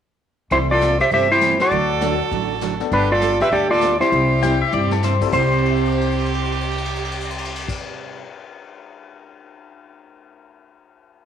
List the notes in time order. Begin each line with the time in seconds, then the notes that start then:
0.51 C2 C3 E3 G3 A3 C4 E4 G4 A4 C5 E5, brush sweep, kick
0.70 F4 A4 D5
0.81 C3 E3 A3 E4 A4, snare, hi-hat pedal
1.00 G4 C5 E5, snare
1.11 G1 C3 E3 A3 E4 G4 A4 C5 E5, brush sweep, kick
1.31 E4 G4 C5
1.41 C3 E3 A3 E4 A4, snare, hi-hat pedal
1.60 F#4 A4 D5, snare
1.71 D2 D3 F#3 A3 D4 F#4, brush sweep, kick
2.01 D3 F#3 A3 D4 F#4, snare, hi-hat pedal
2.31 A1 D3 F#3 A3 D4 F#4, brush sweep, kick
2.61 D3 F#3 A3 D4 F#4, snare, hi-hat pedal
2.80 A3 B3 D4 A4, snare
2.92 G1 G3 B3 D4 G4 A4 B4, brush sweep, kick
3.12 F4 A4 D5
3.21 G3 B3 D4 A4, snare, hi-hat pedal
3.40 G4 B4 E5, snare
3.51 D2 G3 B3 D4 G4 A4 D5, brush sweep, kick
3.70 F4 A4 D5
3.81 G3 B3 D4 A4, snare, hi-hat pedal
4.00 G3 C4 E4 G4 C5, snare
4.12 C2 C3 G3 C4 E4 G4, brush sweep, kick
4.42 C3 G3 C4 E4 G4 G5, snare, hi-hat pedal
4.62 E5
4.72 G2 C3 G3 C4 E4 G4 D5, floor tom
4.91 A4, snare
5.03 C3 G3 C4 E4 G4 C5, snare, hi-hat pedal
5.21 G3 C4 E4 A4, kick, crash
5.27 C2 C3
5.32 C2 C3 G3 C4 E4 G4 C5, kick, crash
5.39 G4
5.51 crash
5.58 ride
5.63 C5, crash
5.70 E5
5.76 A5, ride
5.85 D6, crash
5.92 ride
5.97 G6, crash
6.08 C7, ride
6.18 crash
6.26 ride
6.34 crash
6.45 ride
6.52 crash
6.61 ride
6.71 crash
6.78 ride
6.85 crash
6.95 ride
7.05 crash
7.12 ride
7.20 crash
7.30 ride
7.38 crash
7.45 ride
7.55 crash
7.68 kick, crash